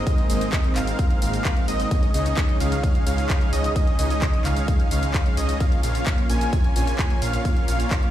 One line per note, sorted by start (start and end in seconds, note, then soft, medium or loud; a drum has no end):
0.00 1.88 G#3 medium
0.00 1.88 A#3 medium
0.00 1.88 C4 medium
0.07 0.26 C4 medium
0.07 0.26 D#4 medium
0.07 0.26 A#4 medium
0.07 0.26 D#5 medium
0.07 kick loud
0.07 closed hi-hat medium
0.07 ride medium
0.07 shaker soft
0.18 closed hi-hat soft
0.30 0.46 G#1 loud
0.30 0.73 G#3 medium
0.30 0.73 C4 medium
0.30 0.73 D#4 medium
0.30 0.73 A#4 medium
0.30 0.73 D#5 medium
0.30 open hi-hat loud
0.30 ride medium
0.30 shaker medium
0.41 closed hi-hat medium
0.41 shaker soft
0.53 kick loud
0.53 clap loud
0.53 closed hi-hat medium
0.53 ride medium
0.53 shaker soft
0.64 closed hi-hat soft
0.76 0.92 G#1 loud
0.76 1.19 G#3 medium
0.76 1.19 C4 medium
0.76 1.19 D#4 medium
0.76 1.19 A#4 medium
0.76 1.19 F5 medium
0.76 clap medium
0.76 open hi-hat loud
0.76 ride medium
0.76 shaker medium
0.87 closed hi-hat medium
0.87 shaker soft
0.99 kick loud
0.99 closed hi-hat medium
0.99 ride medium
0.99 shaker soft
1.10 closed hi-hat soft
1.22 1.38 G#1 loud
1.22 1.54 G#3 medium
1.22 1.54 C4 medium
1.22 1.54 D#4 medium
1.22 1.54 A#4 medium
1.22 1.54 F5 medium
1.22 open hi-hat loud
1.22 ride medium
1.22 shaker medium
1.34 closed hi-hat medium
1.34 shaker soft
1.45 kick loud
1.45 clap loud
1.45 closed hi-hat medium
1.45 ride medium
1.45 shaker soft
1.57 1.66 G#3 medium
1.57 1.67 C4 medium
1.57 1.67 D#4 medium
1.57 1.67 A#4 medium
1.57 1.66 F5 medium
1.57 1.67 F5 medium
1.57 closed hi-hat soft
1.68 1.84 G#1 medium
1.68 1.88 G#3 medium
1.68 1.88 C4 medium
1.68 1.88 D#4 medium
1.68 1.88 A#4 medium
1.68 1.88 D#5 loud
1.68 1.88 D#5 medium
1.68 open hi-hat loud
1.68 ride medium
1.68 shaker medium
1.80 closed hi-hat medium
1.80 shaker soft
1.91 5.57 C#3 medium
1.91 2.11 G#3 medium
1.91 8.11 C#4 medium
1.91 2.11 C#4 medium
1.91 5.57 D#4 medium
1.91 2.11 D#4 medium
1.91 5.57 G#4 medium
1.91 2.11 C#5 medium
1.91 2.11 D#5 medium
1.91 kick loud
1.91 closed hi-hat medium
1.91 ride medium
1.91 shaker soft
2.03 closed hi-hat soft
2.14 2.30 C#2 loud
2.14 2.58 G#3 medium
2.14 2.58 C#4 medium
2.14 2.58 D#4 medium
2.14 2.58 C#5 medium
2.14 2.58 D#5 medium
2.14 open hi-hat loud
2.14 ride medium
2.14 shaker medium
2.26 closed hi-hat medium
2.26 shaker soft
2.37 kick loud
2.37 clap loud
2.37 closed hi-hat medium
2.37 ride medium
2.37 shaker soft
2.49 closed hi-hat soft
2.60 2.76 C#2 loud
2.60 3.04 G#3 medium
2.60 3.04 C#4 medium
2.60 3.04 D#4 medium
2.60 3.04 C#5 medium
2.60 3.04 F5 medium
2.60 open hi-hat loud
2.60 ride medium
2.60 shaker medium
2.72 closed hi-hat medium
2.72 shaker soft
2.83 kick loud
2.83 closed hi-hat medium
2.83 ride medium
2.83 shaker soft
2.95 closed hi-hat soft
3.07 3.23 C#2 loud
3.07 3.38 G#3 medium
3.07 3.38 C#4 medium
3.07 3.38 D#4 medium
3.07 3.38 C#5 medium
3.07 3.38 F5 medium
3.07 open hi-hat loud
3.07 ride medium
3.07 shaker medium
3.18 closed hi-hat medium
3.18 shaker soft
3.29 kick loud
3.29 clap loud
3.29 closed hi-hat medium
3.29 ride medium
3.29 shaker soft
3.41 3.51 G#3 medium
3.41 3.51 C#4 medium
3.41 3.51 D#4 medium
3.41 3.51 C#5 medium
3.41 3.51 F5 medium
3.41 closed hi-hat soft
3.53 3.69 C#2 medium
3.53 3.72 G#3 medium
3.53 3.72 C#4 medium
3.53 3.72 D#4 medium
3.53 3.72 C#5 medium
3.53 3.72 D#5 medium
3.53 3.72 D#5 loud
3.53 open hi-hat loud
3.53 ride medium
3.53 shaker medium
3.64 closed hi-hat medium
3.64 shaker soft
3.76 3.95 G#3 medium
3.76 3.95 C#5 medium
3.76 3.96 D#5 medium
3.76 kick loud
3.76 closed hi-hat medium
3.76 ride medium
3.76 shaker soft
3.87 closed hi-hat soft
3.99 4.15 C#2 loud
3.99 4.42 G#3 medium
3.99 4.42 C#4 medium
3.99 4.42 D#4 medium
3.99 4.42 C#5 medium
3.99 4.42 D#5 medium
3.99 open hi-hat loud
3.99 ride medium
3.99 shaker medium
4.10 closed hi-hat soft
4.10 shaker soft
4.22 kick loud
4.22 clap loud
4.22 closed hi-hat medium
4.22 ride medium
4.22 shaker soft
4.34 closed hi-hat soft
4.45 4.61 C#2 loud
4.45 4.88 G#3 medium
4.45 4.88 C#4 medium
4.45 4.88 D#4 medium
4.45 4.88 C#5 medium
4.45 4.88 F5 medium
4.45 clap medium
4.45 open hi-hat loud
4.45 ride medium
4.45 shaker medium
4.57 closed hi-hat medium
4.57 shaker soft
4.68 kick loud
4.68 closed hi-hat medium
4.68 ride medium
4.68 shaker soft
4.80 closed hi-hat soft
4.91 5.07 C#2 loud
4.91 5.23 G#3 medium
4.91 5.23 C#4 medium
4.91 5.23 D#4 medium
4.91 5.23 C#5 medium
4.91 5.23 F5 medium
4.91 open hi-hat loud
4.91 ride medium
4.91 shaker medium
5.03 closed hi-hat medium
5.03 shaker soft
5.14 kick loud
5.14 clap loud
5.14 closed hi-hat medium
5.14 ride medium
5.14 shaker soft
5.26 5.36 G#3 medium
5.26 5.36 C#4 medium
5.26 5.36 D#4 medium
5.26 5.36 C#5 medium
5.26 5.36 F5 loud
5.26 5.36 F5 medium
5.26 closed hi-hat soft
5.37 5.53 C#2 medium
5.37 5.57 G#3 medium
5.37 5.57 C#4 medium
5.37 5.57 D#4 medium
5.37 5.57 C#5 medium
5.37 5.57 D#5 medium
5.37 5.57 D#5 loud
5.37 open hi-hat loud
5.37 ride medium
5.37 shaker medium
5.49 closed hi-hat medium
5.49 shaker soft
5.60 5.80 A#3 medium
5.60 8.11 A#3 medium
5.60 5.80 C#4 medium
5.60 5.80 F4 medium
5.60 8.11 F4 medium
5.60 5.80 C#5 medium
5.60 5.80 F5 medium
5.60 kick loud
5.60 closed hi-hat medium
5.60 ride medium
5.60 shaker soft
5.72 closed hi-hat soft
5.83 5.99 A#1 loud
5.83 6.27 A#3 medium
5.83 6.27 C#4 medium
5.83 6.27 F4 medium
5.83 6.27 C#5 medium
5.83 6.27 F5 medium
5.83 open hi-hat loud
5.83 ride medium
5.83 shaker medium
5.95 closed hi-hat medium
5.95 shaker soft
6.06 kick loud
6.06 clap loud
6.06 closed hi-hat medium
6.06 ride medium
6.06 shaker soft
6.18 closed hi-hat soft
6.30 6.46 A#1 loud
6.30 6.73 A#3 medium
6.30 6.73 C#4 medium
6.30 6.73 F4 medium
6.30 6.73 C#5 medium
6.30 6.73 G#5 medium
6.30 open hi-hat medium
6.30 ride medium
6.30 shaker medium
6.41 closed hi-hat medium
6.41 shaker soft
6.53 kick loud
6.53 closed hi-hat medium
6.53 ride medium
6.53 shaker soft
6.64 closed hi-hat soft
6.76 6.92 A#1 medium
6.76 7.08 A#3 medium
6.76 7.08 C#4 medium
6.76 7.08 F4 medium
6.76 7.08 C#5 medium
6.76 7.08 G#5 medium
6.76 open hi-hat loud
6.76 ride medium
6.76 shaker medium
6.87 closed hi-hat soft
6.87 shaker soft
6.99 kick loud
6.99 clap loud
6.99 closed hi-hat medium
6.99 ride medium
6.99 shaker soft
7.10 7.20 A#3 medium
7.10 7.20 C#4 medium
7.10 7.20 F4 medium
7.10 7.20 C#5 medium
7.10 7.20 G#5 medium
7.10 closed hi-hat soft
7.22 7.38 A#1 medium
7.22 7.42 A#3 medium
7.22 7.42 C#4 medium
7.22 7.42 F4 medium
7.22 7.42 C#5 medium
7.22 7.42 F5 medium
7.22 7.42 F5 loud
7.22 open hi-hat loud
7.22 ride medium
7.22 shaker medium
7.33 closed hi-hat medium
7.33 shaker soft
7.45 7.65 A#3 medium
7.45 7.65 C#4 medium
7.45 7.65 F4 medium
7.45 7.65 C#5 medium
7.45 7.65 F5 medium
7.45 kick loud
7.45 closed hi-hat medium
7.45 ride medium
7.45 shaker soft
7.57 closed hi-hat soft
7.68 7.84 A#1 loud
7.68 8.11 A#3 medium
7.68 8.11 C#4 medium
7.68 8.11 F4 medium
7.68 8.11 C#5 medium
7.68 8.11 F5 medium
7.68 open hi-hat loud
7.68 ride medium
7.68 shaker medium
7.80 closed hi-hat medium
7.80 shaker soft
7.91 kick loud
7.91 clap loud
7.91 closed hi-hat medium
7.91 ride medium
7.91 shaker soft
8.03 closed hi-hat soft